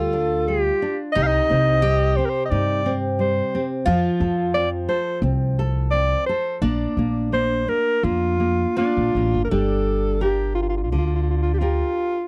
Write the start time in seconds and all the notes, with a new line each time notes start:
Already playing: D2 G3 F4 A4
0.13 D4
0.48 G3 G4
0.82 D4
1.12 C3 D#4 D#5
1.16 C2
1.23 D#5 F5
1.50 C2 C4
1.82 G3 G4
2.17 C4 C5
2.25 A#4 C5
2.45 D#5
2.51 G2 D#4 D5
2.86 C4
3.19 G3 C5
3.55 C4
3.86 F2 F3 F4
4.20 F2 A4
4.54 C4 D5
4.89 A4 C5
5.22 C2 C4
5.59 A4
5.91 C4 D5
6.26 A4 C5
6.62 A#1 A#3 D4
6.97 A#1 A#3
7.32 A#3 C5
7.68 A#3 A#4
8.03 F2 A#3 F4
8.40 A#3
8.76 A#3 D4 F4
8.97 A#1
9.15 A1 A#3
9.34 G1
9.44 A#4
9.50 G1 G3 D4 A4
10.21 F4 G4 A#4
10.55 F4
10.62 F4
10.69 F4
10.77 F4
10.84 F4
10.91 D2 D3 F4
10.98 F4
11.06 F4
11.15 F4
11.23 F4
11.30 F4
11.37 F4
11.42 F4
11.54 G4
11.58 F4 G4 A#4